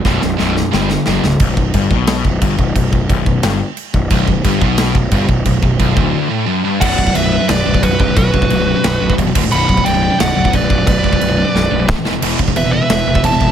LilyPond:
<<
  \new Staff \with { instrumentName = "Lead electric guitar" } { \time 4/4 \key b \minor \tempo 4 = 177 r1 | r1 | r1 | r1 |
r1 | fis''4 e''4 d''4 b'8 b'8 | b'2. r4 | b''4 g''4 fis''4 d''4 |
d''2. r4 | r4 e''8 e''4. a''4 | }
  \new Staff \with { instrumentName = "Lead electric guitar" } { \time 4/4 \key b \minor r1 | r1 | r1 | r1 |
r1 | d''4 b'4 b'4 fis'8 g'8 | fis'2. r4 | fis''4 d''4 d''4 b'4 |
b'2. r4 | r4 b'8 b'4. e''4 | }
  \new Staff \with { instrumentName = "Distorted electric guitar" } { \clef bass \time 4/4 \key b \minor <b,, fis, b,>8 <b,, fis,>8 <b,, fis, b,>8 <b,, fis,>8 <g, d g>8 <g, d>8 <fis, cis fis>8 <fis, cis>8 | b,,8 b,,8 g,8 b,4 b,,8 g,8 b,,8 | b,,8 b,,8 b,,8 b,,8 g,8 r4 b,,8 | b,,8 b,,8 g,8 b,4 b,,8 g,8 b,,8 |
b,,8 b,,8 b,,8 d,4 a,8 fis,8 g,8 | <b,, fis, b,>8 <b,, fis,>16 <b,, fis,>16 <b,, fis,>16 <b,, fis,>16 <b,, fis,>16 <b,, fis,>16 <b,, fis,>8 <b,, fis,>16 <b,, fis,>16 <b,, fis,>16 <b,, fis,>16 <b,, fis,>16 <b,, fis,>16 | <b,, fis,>8 <b,, fis,>16 <b,, fis,>16 <b,, fis,>16 <b,, fis,>16 <b,, fis,>16 <b,, fis,>16 <b,, fis,>8 <b,, fis,>16 <b,, fis,>16 <b,, fis,>16 <b,, fis,>16 <d, a, d>16 <d, a,>16 | <b,, fis, b,>8 <b,, fis,>16 <b,, fis,>16 <b,, fis,>16 <b,, fis,>16 <b,, fis,>16 <b,, fis,>16 <b,, fis,>8 <b,, fis,>16 <b,, fis,>16 <b,, fis,>16 <b,, fis,>16 <b,, fis,>16 <b,, fis,>16 |
<b,, fis,>8 <b,, fis,>16 <b,, fis,>16 <b,, fis,>16 <b,, fis,>16 <b,, fis,>16 <b,, fis,>16 <b,, fis,>8 <b,, fis,>16 <b,, fis,>16 <a, e a>16 <a, e>16 <e, b, e>16 <e, b,>16 | <e, b, e>8 <e, b,>16 <e, b,>16 <e, b,>16 <e, b,>16 <e, b,>16 <e, b,>16 <e, b,>8 <e, b,>16 <e, b,>16 <e, b,>16 <e, b,>16 <e, b,>16 r16 | }
  \new Staff \with { instrumentName = "Distorted electric guitar" } { \clef bass \time 4/4 \key b \minor <b,, fis, b,>8 <b,, fis,>8 <b,, fis, b,>8 <b,, fis,>8 <g, d g>8 <g, d>8 <fis, cis fis>8 <fis, cis>8 | r1 | r1 | b,,8 b,,8 g,8 b,4 b,,8 g,8 b,,8 |
b,,8 b,,8 b,,8 d,4 a,8 fis,8 g,8 | <b,, fis, b,>8 <b,, fis,>16 <b,, fis,>16 <b,, fis,>16 <b,, fis,>16 <b,, fis,>16 <b,, fis,>16 <b,, fis,>8 <b,, fis,>16 <b,, fis,>16 <b,, fis,>16 <b,, fis,>16 <b,, fis,>16 <b,, fis,>16 | <b,, fis,>8 <b,, fis,>16 <b,, fis,>16 <b,, fis,>16 <b,, fis,>16 <b,, fis,>16 <b,, fis,>16 <b,, fis,>8 <b,, fis,>16 <b,, fis,>16 <b,, fis,>16 <b,, fis,>16 <d, a, d>16 <d, a,>16 | <b,, fis, b,>8 <b,, fis,>16 <b,, fis,>16 <b,, fis,>16 <b,, fis,>16 <b,, fis,>16 <b,, fis,>16 <b,, fis,>8 <b,, fis,>16 <b,, fis,>16 <b,, fis,>16 <b,, fis,>16 <b,, fis,>16 <b,, fis,>16 |
<b,, fis,>8 <b,, fis,>16 <b,, fis,>16 <b,, fis,>16 <b,, fis,>16 <b,, fis,>16 <b,, fis,>16 <b,, fis,>8 <b,, fis,>16 <b,, fis,>16 <a, e a>16 <a, e>16 <e, b, e>16 <e, b,>16 | <e, b, e>8 <e, b,>16 <e, b,>16 <e, b,>16 <e, b,>16 <e, b,>16 <e, b,>16 <e, b,>8 <e, b,>16 <e, b,>16 <e, b,>16 <e, b,>16 <e, b,>16 b,16 | }
  \new Staff \with { instrumentName = "Picked electric bass" } { \clef bass \time 4/4 \key b \minor b,,,8 b,,,8 b,,,4 g,,4 fis,,8 c,,8 | b,,,8 b,,,8 g,,8 b,,4 b,,,8 g,,8 b,,,8 | b,,,8 b,,,8 b,,,8 b,,,8 g,,8 r4 b,,,8 | b,,,8 b,,,8 g,,8 b,,4 b,,,8 g,,8 b,,,8 |
b,,,8 b,,,8 b,,,8 d,,8 r2 | b,,,8 b,,,8 b,,,4 b,,,8 b,,,8 b,,,8 b,,,8 | b,,,8 b,,,8 b,,,4 b,,,8 b,,,8 e,,8 d,,8 | b,,,8 b,,,8 b,,,4 b,,,8 b,,,8 b,,,8 b,,,8 |
b,,,8 b,,,8 b,,,4 b,,,8 b,,,8 a,,8 e,,8 | e,,8 e,,8 e,,4 e,,8 e,,8 e,,8 e,,8 | }
  \new DrumStaff \with { instrumentName = "Drums" } \drummode { \time 4/4 <bd sn>8 sn8 sn8 sn8 sn8 sn8 sn8 sn8 | <cymc bd>8 bd8 <cymc bd>8 bd8 <cymc sn>8 bd8 <cymc bd>8 bd8 | <cymc bd>8 bd8 <cymc bd>8 bd8 <cymc sn>4 cymc8 bd8 | <cymc bd>8 bd8 <cymc bd>8 bd8 <cymc sn>8 bd8 <cymc bd>8 bd8 |
<cymc bd>8 bd8 <cymc bd>8 bd8 r4 r4 | <cymc bd>8 bd16 bd16 cymc4 <cymc sn>8. bd16 <cymc bd>8 bd8 | <cymc bd>8 bd16 bd16 cymc4 <cymc sn>8. bd16 <cymc bd>8 <cymc bd>8 | cymc8 bd16 bd16 cymc4 <cymc sn>8. bd16 <cymc bd>8 bd8 |
<cymc bd>8 bd16 bd16 cymc4 sn4 <bd sn>8 sn8 | cymc8 bd16 bd16 cymc4 <cymc sn>8. bd16 <cymc bd>8 bd8 | }
>>